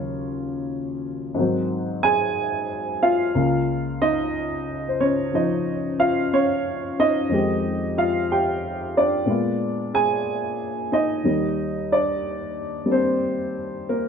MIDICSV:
0, 0, Header, 1, 2, 480
1, 0, Start_track
1, 0, Tempo, 985222
1, 1632, Time_signature, 4, 2, 24, 8
1, 6862, End_track
2, 0, Start_track
2, 0, Title_t, "Upright piano"
2, 0, Program_c, 0, 0
2, 0, Control_c, 0, 64, 127
2, 0, Note_on_c, 0, 39, 51
2, 0, Note_on_c, 0, 49, 43
2, 0, Note_on_c, 0, 54, 48
2, 0, Note_on_c, 0, 61, 52
2, 0, Note_on_c, 0, 65, 60
2, 0, Note_on_c, 0, 73, 68
2, 494, Note_off_c, 0, 73, 0
2, 495, Note_off_c, 0, 61, 0
2, 655, Note_on_c, 0, 44, 55
2, 664, Note_on_c, 0, 51, 49
2, 673, Note_off_c, 0, 39, 0
2, 673, Note_off_c, 0, 49, 0
2, 673, Note_off_c, 0, 54, 0
2, 674, Note_on_c, 0, 60, 51
2, 677, Note_off_c, 0, 65, 0
2, 678, Control_c, 0, 64, 0
2, 680, Note_on_c, 0, 54, 59
2, 748, Control_c, 0, 64, 127
2, 990, Note_on_c, 0, 80, 111
2, 997, Note_on_c, 0, 68, 68
2, 1454, Note_off_c, 0, 68, 0
2, 1474, Note_on_c, 0, 77, 85
2, 1476, Note_on_c, 0, 65, 76
2, 1484, Note_off_c, 0, 80, 0
2, 1624, Note_off_c, 0, 44, 0
2, 1628, Note_off_c, 0, 51, 0
2, 1630, Note_off_c, 0, 65, 0
2, 1631, Note_on_c, 0, 37, 55
2, 1633, Note_off_c, 0, 60, 0
2, 1634, Note_on_c, 0, 49, 43
2, 1634, Note_on_c, 0, 58, 50
2, 1636, Note_off_c, 0, 54, 0
2, 1637, Note_on_c, 0, 65, 51
2, 1638, Control_c, 0, 64, 0
2, 1730, Control_c, 0, 64, 127
2, 1957, Note_on_c, 0, 75, 101
2, 1958, Note_on_c, 0, 63, 71
2, 1966, Note_off_c, 0, 77, 0
2, 2369, Note_off_c, 0, 63, 0
2, 2380, Note_on_c, 0, 72, 51
2, 2401, Note_off_c, 0, 75, 0
2, 2427, Note_off_c, 0, 72, 0
2, 2439, Note_on_c, 0, 61, 69
2, 2439, Note_on_c, 0, 73, 78
2, 2586, Note_off_c, 0, 61, 0
2, 2592, Note_on_c, 0, 53, 37
2, 2598, Note_off_c, 0, 65, 0
2, 2598, Note_on_c, 0, 61, 39
2, 2602, Note_off_c, 0, 73, 0
2, 2605, Note_on_c, 0, 65, 43
2, 2606, Note_on_c, 0, 63, 59
2, 2607, Note_on_c, 0, 75, 70
2, 2898, Note_off_c, 0, 63, 0
2, 2913, Note_off_c, 0, 65, 0
2, 2920, Note_on_c, 0, 65, 64
2, 2922, Note_on_c, 0, 77, 90
2, 2927, Note_off_c, 0, 75, 0
2, 3067, Note_off_c, 0, 65, 0
2, 3068, Note_off_c, 0, 77, 0
2, 3078, Note_off_c, 0, 61, 0
2, 3085, Note_on_c, 0, 61, 64
2, 3087, Note_on_c, 0, 73, 85
2, 3377, Note_off_c, 0, 61, 0
2, 3407, Note_off_c, 0, 73, 0
2, 3407, Note_on_c, 0, 63, 61
2, 3409, Note_on_c, 0, 75, 98
2, 3551, Note_on_c, 0, 41, 47
2, 3553, Note_off_c, 0, 37, 0
2, 3553, Note_off_c, 0, 53, 0
2, 3554, Note_off_c, 0, 49, 0
2, 3554, Note_off_c, 0, 58, 0
2, 3560, Control_c, 0, 64, 0
2, 3561, Note_on_c, 0, 51, 44
2, 3567, Note_on_c, 0, 56, 44
2, 3575, Note_on_c, 0, 67, 56
2, 3633, Control_c, 0, 64, 127
2, 3860, Note_off_c, 0, 63, 0
2, 3861, Note_off_c, 0, 75, 0
2, 3887, Note_on_c, 0, 65, 70
2, 3890, Note_on_c, 0, 77, 85
2, 3922, Note_off_c, 0, 65, 0
2, 3924, Note_off_c, 0, 77, 0
2, 4044, Note_off_c, 0, 67, 0
2, 4052, Note_on_c, 0, 67, 59
2, 4053, Note_on_c, 0, 79, 68
2, 4341, Note_off_c, 0, 67, 0
2, 4370, Note_off_c, 0, 79, 0
2, 4372, Note_on_c, 0, 74, 76
2, 4373, Note_on_c, 0, 62, 68
2, 4508, Note_off_c, 0, 56, 0
2, 4510, Note_on_c, 0, 46, 49
2, 4513, Note_off_c, 0, 41, 0
2, 4515, Note_on_c, 0, 56, 40
2, 4517, Note_off_c, 0, 51, 0
2, 4521, Control_c, 0, 64, 0
2, 4526, Note_on_c, 0, 59, 43
2, 4533, Note_on_c, 0, 65, 51
2, 4617, Control_c, 0, 64, 127
2, 4823, Note_off_c, 0, 62, 0
2, 4844, Note_on_c, 0, 68, 71
2, 4847, Note_on_c, 0, 80, 96
2, 4856, Note_off_c, 0, 74, 0
2, 5298, Note_off_c, 0, 68, 0
2, 5299, Note_off_c, 0, 80, 0
2, 5321, Note_on_c, 0, 63, 65
2, 5327, Note_on_c, 0, 75, 85
2, 5472, Note_off_c, 0, 46, 0
2, 5474, Note_off_c, 0, 56, 0
2, 5474, Note_on_c, 0, 39, 47
2, 5479, Control_c, 0, 64, 0
2, 5480, Note_off_c, 0, 59, 0
2, 5480, Note_on_c, 0, 51, 44
2, 5482, Note_on_c, 0, 55, 44
2, 5483, Note_off_c, 0, 65, 0
2, 5565, Control_c, 0, 64, 127
2, 5776, Note_off_c, 0, 63, 0
2, 5808, Note_on_c, 0, 62, 64
2, 5809, Note_on_c, 0, 74, 85
2, 5813, Note_off_c, 0, 75, 0
2, 6257, Note_off_c, 0, 55, 0
2, 6260, Note_off_c, 0, 62, 0
2, 6260, Note_off_c, 0, 74, 0
2, 6264, Note_on_c, 0, 55, 44
2, 6269, Note_on_c, 0, 58, 37
2, 6277, Note_on_c, 0, 62, 44
2, 6292, Note_on_c, 0, 60, 61
2, 6293, Note_on_c, 0, 72, 75
2, 6741, Note_off_c, 0, 60, 0
2, 6764, Note_off_c, 0, 58, 0
2, 6768, Note_on_c, 0, 70, 69
2, 6771, Note_on_c, 0, 58, 59
2, 6775, Note_off_c, 0, 72, 0
2, 6862, Note_off_c, 0, 39, 0
2, 6862, Note_off_c, 0, 51, 0
2, 6862, Note_off_c, 0, 55, 0
2, 6862, Note_off_c, 0, 58, 0
2, 6862, Note_off_c, 0, 62, 0
2, 6862, Note_off_c, 0, 70, 0
2, 6862, End_track
0, 0, End_of_file